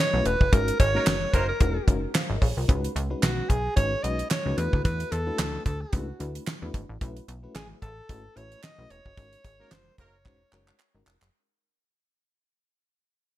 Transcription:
0.00 alto saxophone C#5
0.13 analog synth bass B1, fm electric piano A3 C#4 E4 F#4 B4
0.26 analog synth bass E1, alto saxophone B4, closed hi-hat
0.41 analog synth bass F#1, kick
0.52 analog synth bass G#1, fm electric piano G#3 C#4 D#4 F#4 A#4, alto saxophone A#4, kick, closed hi-hat
0.68 closed hi-hat
0.80 analog synth bass G#1, alto saxophone C#5, kick, closed hi-hat
0.94 horn section F#3 A#3 D#4 A#4, fm electric piano G#3 C#4 D#4 F#4 A#4
1.06 analog synth bass F#1, snare, clap, closed hi-hat
1.31 analog synth bass F#1, horn section F#3 A#3 D#4 A#4, alto saxophone B4 C5, kick, closed hi-hat
1.49 alto saxophone A#4
1.60 analog synth bass E1, fm electric piano G#3 C#4 D#4 F#4 A#4, kick, closed hi-hat
1.87 analog synth bass F#1, fm electric piano G#3 C#4 D#4 F#4 A#4, kick, closed hi-hat
2.15 fm electric piano C5 F5, snare, clap, closed hi-hat
2.30 analog synth bass G#1, fm electric piano A#4 D#5
2.42 analog synth bass A#1, fm electric piano G#4 C#5, kick, open hi-hat
2.57 analog synth bass C2, fm electric piano F4 A#4
2.68 analog synth bass C#2, fm electric piano G#3 C#4 D#4 F#4 B4, kick, closed hi-hat
2.84 closed hi-hat
2.96 analog synth bass C#2, closed hi-hat
3.10 fm electric piano G#3 C#4 D#4 F#4 B4
3.23 analog synth bass B1, alto saxophone F#4, snare, clap, closed hi-hat
3.50 analog synth bass B1, alto saxophone G#4, kick, closed hi-hat
3.76 analog synth bass G#1, fm electric piano G#3 C#4 D#4 F#4 B4, alto saxophone C#5, kick, closed hi-hat
4.03 analog synth bass B1, fm electric piano G#3 C#4 D#4 F#4 B4, alto saxophone D#5, closed hi-hat
4.19 closed hi-hat
4.30 alto saxophone C#5, snare, clap, closed hi-hat
4.45 analog synth bass C#2, fm electric piano G#3 C#4 D#4 F#4 B4
4.57 analog synth bass E2, fm electric piano A3 D4 E4 F#4 B4, alto saxophone B4, closed hi-hat
4.73 analog synth bass D2, kick
4.85 analog synth bass E2, alto saxophone B4, kick, closed hi-hat
5.00 closed hi-hat
5.12 analog synth bass E2, alto saxophone A4, closed hi-hat
5.26 fm electric piano G#3 D4 E4 F#4 B4
5.33 fm electric piano A3
5.39 analog synth bass D2, snare, clap, closed hi-hat
5.66 analog synth bass D2, alto saxophone A4, kick, closed hi-hat
5.81 alto saxophone F#4
5.92 analog synth bass C#2, fm electric piano A3 D4 E4 F#4 B4, kick, closed hi-hat
6.20 analog synth bass D2, fm electric piano A3 D4 E4 F#4 B4, closed hi-hat
6.35 closed hi-hat
6.47 snare, clap, closed hi-hat
6.62 analog synth bass E2, fm electric piano A3 D4 E4 F#4 B4
6.74 analog synth bass G#1, kick, closed hi-hat
6.89 analog synth bass A1
7.01 analog synth bass B1, fm electric piano A3 C#4 E4 F#4 B4, kick, closed hi-hat
7.17 closed hi-hat
7.28 analog synth bass B1, closed hi-hat
7.43 fm electric piano A3 C#4 E4 F#4 B4
7.55 analog synth bass A1, alto saxophone G#4, snare, clap, closed hi-hat
7.82 analog synth bass A1, alto saxophone A4, kick, closed hi-hat
8.09 analog synth bass G#1, fm electric piano A3 C#4 E4 F#4 B4, kick, closed hi-hat
8.36 analog synth bass A1, fm electric piano A3 C#4 E4 F#4 B4, alto saxophone C#5, closed hi-hat
8.52 closed hi-hat
8.63 alto saxophone D#5, snare, clap, closed hi-hat
8.78 analog synth bass B1, fm electric piano A3 C#4 E4 F#4 B4
8.90 analog synth bass E1, alto saxophone C#5, closed hi-hat
9.06 analog synth bass F#1, kick
9.17 analog synth bass G#1, fm electric piano G#3 C#4 D#4 F#4 A#4, kick, closed hi-hat
9.33 closed hi-hat
9.44 analog synth bass G#1, kick, closed hi-hat
9.59 horn section F#3 A#3 D#4 A#4, fm electric piano G#3 C#4 D#4 F#4 A#4
9.71 analog synth bass F#1, alto saxophone C5, snare, clap, closed hi-hat
9.98 analog synth bass F#1, horn section F#3 A#3 D#4 A#4, alto saxophone C#5, kick, closed hi-hat
10.25 analog synth bass E1, fm electric piano G#3 C#4 D#4 F#4 C5, kick, clap
10.52 analog synth bass F#1, fm electric piano G#3 C#4 D#4 F#4 A#4, clap
10.68 clap
10.79 clap
10.94 analog synth bass G#1, fm electric piano G#3 C#4 D#4 F#4 A#4
11.06 analog synth bass F1, clap
11.22 analog synth bass F#1, clap

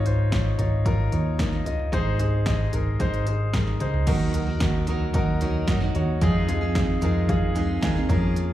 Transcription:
Already playing: fretless electric bass G#1, grand piano G#2 D#4 F4 C#5
0.04 grand piano D#4 F4 C5, closed hi-hat, floor tom
0.31 grand piano D#4 F4 C#5, kick, snare, closed hi-hat
0.58 fretless electric bass G#1, grand piano D#4 F4 C#5, closed hi-hat, floor tom
0.85 grand piano D#4 F4 A#4, kick, closed hi-hat
1.12 fretless electric bass D#2, grand piano D#4 F4 C#5, closed hi-hat
1.38 grand piano D#4 F4 A#4, kick, snare, closed hi-hat
1.52 snare
1.66 grand piano D#4 F4 D#5, closed hi-hat, floor tom
1.79 floor tom
1.92 fretless electric bass G#1, grand piano G#2 D#4 G#4 C5, kick, closed hi-hat
2.19 grand piano D#4 G#4 C5, closed hi-hat, floor tom
2.46 grand piano D#4 G#4 D#5, kick, snare, closed hi-hat
2.72 fretless electric bass G#1, grand piano D#4 G#4 A#4, closed hi-hat, floor tom
2.99 fretless electric bass G#1, grand piano D#4 G#4 C5, kick, closed hi-hat
3.14 closed hi-hat
3.26 grand piano D#4 G#4 C5, closed hi-hat
3.53 grand piano D#4 G#4 A#4, kick, snare, closed hi-hat
3.67 snare
3.80 fretless electric bass C#2, grand piano D#4 G#4 C5, closed hi-hat, floor tom
3.94 floor tom
4.07 fretless electric bass D#2, steel-string acoustic guitar D#3 F#3 D#4 F#4 A#4, grand piano D#3 D#4 F#4 A#4, kick, closed hi-hat, crash
4.34 grand piano D#4 F#4 A#4, closed hi-hat, floor tom
4.47 steel-string acoustic guitar D#4 F#4 A#4
4.60 fretless electric bass D#2, grand piano D#4 F#4 A#4, kick, snare, closed hi-hat
4.87 steel-string acoustic guitar F#3 D#4 F#4 A#4, grand piano D#4 F#4 A#4, closed hi-hat, floor tom
5.13 fretless electric bass D#2, grand piano D#4 F#4 A#4, kick, closed hi-hat
5.40 steel-string acoustic guitar F#3 D#4 F#4 A#4, grand piano D#4 F#4 C#5, closed hi-hat, floor tom
5.67 fretless electric bass F#2, steel-string acoustic guitar F#3 D#4 F#4 A#4, grand piano D#4 F#4 A#4, kick, snare, closed hi-hat
5.80 steel-string acoustic guitar D#4 F#4 A#4, snare
5.94 fretless electric bass D#2, grand piano D#4 F#4 C#5, closed hi-hat
6.21 fretless electric bass F2, steel-string acoustic guitar F3 G#3 C4 D#4 G#4, grand piano D#4 F4 G#4, kick, closed hi-hat
6.48 grand piano D#4 F4 G#4, closed hi-hat, floor tom
6.61 steel-string acoustic guitar C4 D#4 G#4
6.75 grand piano D#4 F4 G#4, kick, snare, closed hi-hat
7.01 fretless electric bass F2, steel-string acoustic guitar G#3 C4 D#4 G#4, grand piano D#4 F4 A#4 D#5, closed hi-hat, floor tom
7.28 grand piano D#4 F4 G#4 F5, kick, closed hi-hat
7.55 steel-string acoustic guitar G#3 C4 D#4 G#4, grand piano D#4 F4 G#4, closed hi-hat, floor tom
7.81 fretless electric bass D#2, steel-string acoustic guitar G#3 C4 D#4 G#4, grand piano D#4 F4 A#4 G#5, kick, snare, closed hi-hat
7.95 steel-string acoustic guitar C4 D#4 G#4, snare
8.08 fretless electric bass F2, steel-string acoustic guitar F3 A#3 C#4 F4 G#4, grand piano C#4 G#4 A#4 A#5, kick, closed hi-hat
8.36 closed hi-hat

